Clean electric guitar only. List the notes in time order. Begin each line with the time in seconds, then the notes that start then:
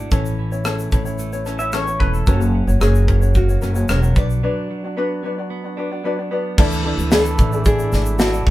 Already playing: F#3 A3 D4 F#4
0.12 E3 C#4
0.39 E3
0.66 A3
0.93 E3
1.19 A3
1.46 C#4
1.74 E3
2.01 A3
2.27 F#3 C#4
2.54 F#3
2.82 A#3
3.09 F#3
3.35 A#3
3.63 C#4
3.90 F#3
4.16 F#3
4.43 F#3 D4
4.70 F#3
4.97 B3
5.23 F#3
5.50 B3
5.77 D4
6.04 F#3
6.31 B3
6.58 E3
6.85 A3
7.12 E3
7.40 A3
7.66 D4
7.93 A3
8.20 D4
8.47 F#3